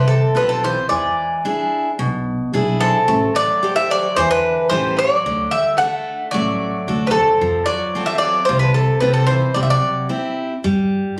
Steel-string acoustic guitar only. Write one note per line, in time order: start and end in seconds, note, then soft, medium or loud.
0.00 0.34 C3 medium
0.35 0.79 C4 soft
0.35 0.80 F4 soft
0.35 0.79 A4 soft
0.90 1.43 E3 medium
1.45 1.89 D4 soft
1.45 1.89 E4 soft
1.45 1.89 G#4 medium
1.99 2.52 B2 medium
2.53 2.97 D4 soft
2.53 2.98 E4 soft
2.53 2.98 G#4 medium
3.08 3.61 A3 medium
3.63 4.06 G4 soft
3.63 4.06 A4 soft
3.63 4.07 C5 medium
4.18 4.70 E3 medium
4.71 5.14 G4 soft
4.71 5.15 A4 soft
4.71 5.15 C5 medium
5.26 5.78 D3 medium
5.80 6.23 D4 soft
5.80 6.23 F#4 soft
5.80 6.23 A4 medium
6.34 6.86 A3 medium
6.88 7.31 D4 soft
6.88 7.31 F#4 soft
6.88 7.31 A4 soft
7.41 7.94 F3 medium
7.95 8.38 C4 soft
7.95 8.38 F4 soft
7.95 8.39 A4 medium
8.49 9.01 C3 medium
9.02 9.45 C4 soft
9.02 9.46 F4 soft
9.02 9.46 A4 soft
9.56 10.09 C3 medium
10.09 10.53 C4 soft
10.09 10.53 E4 soft
10.09 10.53 G4 medium
10.64 11.16 G3 medium